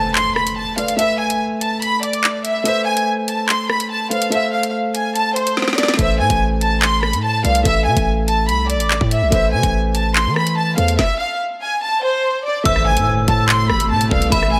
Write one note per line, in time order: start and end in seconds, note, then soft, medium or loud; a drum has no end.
0.00 0.74 A3 medium
0.00 0.75 A4 medium
0.00 0.75 B4 medium
0.00 0.76 C5 medium
0.00 0.14 A5 medium
0.00 impact medium
0.15 0.35 C6 medium
0.15 clap loud
0.36 0.55 B5 medium
0.36 cross-stick medium
0.47 closed hi-hat medium
0.57 0.76 A5 medium
0.77 0.95 A3 soft
0.77 0.96 A4 soft
0.77 0.98 B4 soft
0.77 0.99 D5 medium
0.77 0.97 F5 medium
0.77 closed hi-hat medium
0.88 closed hi-hat medium
0.97 2.61 A3 medium
0.97 2.62 A4 medium
0.97 2.62 B4 medium
0.97 1.18 E5 loud
0.97 2.63 E5 medium
0.97 closed hi-hat medium
1.19 1.39 G#5 medium
1.30 closed hi-hat medium
1.61 1.80 A5 medium
1.61 closed hi-hat medium
1.82 2.01 B5 medium
1.82 closed hi-hat medium
2.03 2.42 D5 medium
2.03 closed hi-hat medium
2.13 closed hi-hat medium
2.24 clap loud
2.45 2.64 E5 medium
2.45 closed hi-hat medium
2.64 4.07 A3 medium
2.64 4.08 A4 medium
2.64 4.09 B4 medium
2.64 4.10 C5 medium
2.64 2.85 E5 loud
2.64 closed hi-hat medium
2.86 3.05 G#5 medium
2.97 closed hi-hat medium
3.28 3.47 A5 medium
3.28 closed hi-hat medium
3.49 3.68 C6 medium
3.49 clap loud
3.70 3.89 B5 medium
3.70 cross-stick medium
3.80 closed hi-hat medium
3.91 4.10 A5 medium
4.10 4.29 A3 soft
4.10 4.30 A4 soft
4.10 4.32 B4 soft
4.10 4.31 C5 medium
4.10 4.30 F5 medium
4.10 closed hi-hat medium
4.22 closed hi-hat medium
4.30 5.94 A3 medium
4.30 5.95 A4 medium
4.30 5.96 C5 medium
4.30 4.51 E5 loud
4.30 closed hi-hat medium
4.34 5.96 F5 medium
4.53 4.72 F5 medium
4.63 closed hi-hat medium
4.95 5.14 G#5 medium
4.95 closed hi-hat medium
5.16 5.35 A5 medium
5.16 closed hi-hat medium
5.36 5.75 C5 medium
5.36 closed hi-hat medium
5.47 closed hi-hat medium
5.57 snare medium
5.62 snare medium
5.68 snare medium
5.73 snare medium
5.78 5.97 D5 medium
5.78 snare medium
5.78 closed hi-hat medium
5.83 snare medium
5.88 snare loud
5.94 7.41 A3 medium
5.94 snare medium
5.98 6.21 A1 loud
5.98 7.41 A4 medium
5.98 7.42 B4 medium
5.98 7.43 C5 medium
5.98 6.18 E5 loud
5.98 kick loud
5.98 closed hi-hat medium
6.20 6.30 A2 loud
6.20 6.39 G#5 medium
6.30 7.15 A1 loud
6.30 kick medium
6.30 closed hi-hat medium
6.61 6.80 A5 medium
6.61 closed hi-hat medium
6.82 7.01 C6 medium
6.82 clap loud
7.03 7.22 B5 medium
7.03 cross-stick medium
7.13 7.43 A2 medium
7.13 closed hi-hat medium
7.24 7.43 A5 medium
7.44 7.65 C2 loud
7.44 7.62 A3 soft
7.44 7.63 A4 soft
7.44 7.65 B4 soft
7.44 7.66 D5 medium
7.44 7.64 F5 medium
7.44 closed hi-hat medium
7.55 closed hi-hat medium
7.63 7.88 A1 loud
7.63 9.28 A3 medium
7.63 9.28 A4 medium
7.63 9.29 B4 medium
7.63 7.84 E5 loud
7.63 9.30 E5 medium
7.63 kick loud
7.63 closed hi-hat medium
7.86 7.96 C3 loud
7.86 8.05 G#5 medium
7.97 8.50 A1 loud
7.97 kick medium
7.97 closed hi-hat medium
8.28 8.47 A5 medium
8.28 closed hi-hat medium
8.49 8.76 C2 loud
8.49 8.68 B5 medium
8.49 closed hi-hat medium
8.70 9.09 D5 medium
8.70 closed hi-hat medium
8.75 9.00 A1 loud
8.80 closed hi-hat medium
8.91 clap loud
9.01 9.23 A2 loud
9.01 kick medium
9.11 9.31 E5 medium
9.11 closed hi-hat medium
9.22 9.32 B1 loud
9.30 9.54 A1 loud
9.30 10.74 A3 medium
9.30 10.75 A4 medium
9.30 10.76 B4 medium
9.30 10.76 C5 medium
9.30 9.51 E5 loud
9.30 kick loud
9.30 closed hi-hat medium
9.53 9.63 C3 loud
9.53 9.72 G#5 medium
9.63 10.28 A1 loud
9.63 kick medium
9.63 closed hi-hat medium
9.95 10.14 A5 medium
9.95 closed hi-hat medium
10.16 10.35 C6 medium
10.16 clap loud
10.26 10.75 E3 loud
10.36 10.55 B5 medium
10.36 cross-stick medium
10.47 closed hi-hat medium
10.57 10.76 A5 medium
10.77 10.98 E2 loud
10.77 10.98 A3 soft
10.77 10.98 A4 soft
10.77 10.99 B4 soft
10.77 10.99 C5 medium
10.77 10.97 F5 medium
10.77 closed hi-hat medium
10.88 closed hi-hat medium
10.99 11.18 E5 loud
10.99 kick loud
10.99 snare medium
11.19 11.39 F5 medium
11.61 11.80 G#5 medium
11.83 12.02 A5 medium
12.03 12.42 C5 medium
12.45 12.64 D5 medium
12.64 12.98 A1 loud
12.64 14.60 B2 medium
12.64 14.30 C3 medium
12.64 14.07 A3 medium
12.64 14.30 A3 medium
12.64 14.08 A4 medium
12.64 14.09 B4 medium
12.64 14.09 C5 medium
12.64 12.85 E5 loud
12.64 14.28 E6 loud
12.64 kick loud
12.64 closed hi-hat medium
12.64 impact medium
12.76 cross-stick medium
12.87 13.06 G#5 medium
12.97 13.26 A2 loud
12.97 closed hi-hat medium
13.28 13.71 A2 loud
13.28 13.47 A5 medium
13.28 kick medium
13.28 closed hi-hat medium
13.49 13.68 C6 medium
13.49 clap loud
13.70 13.92 G#1 loud
13.70 13.89 B5 medium
13.70 cross-stick medium
13.80 closed hi-hat medium
13.91 14.10 A2 loud
13.91 14.10 A5 medium
14.01 closed hi-hat medium
14.10 14.31 C2 loud
14.10 14.28 A3 medium
14.10 14.30 A4 soft
14.10 14.31 B4 soft
14.10 14.33 D5 medium
14.10 14.31 F5 medium
14.10 kick loud
14.22 closed hi-hat medium
14.30 14.60 A1 loud
14.30 14.60 E3 medium
14.30 14.60 A3 medium
14.30 14.60 A4 medium
14.30 14.60 B4 medium
14.30 14.51 E5 loud
14.30 14.60 E5 medium
14.30 14.60 B5 loud
14.30 kick loud
14.30 closed hi-hat medium
14.43 cross-stick medium
14.53 14.60 G#5 medium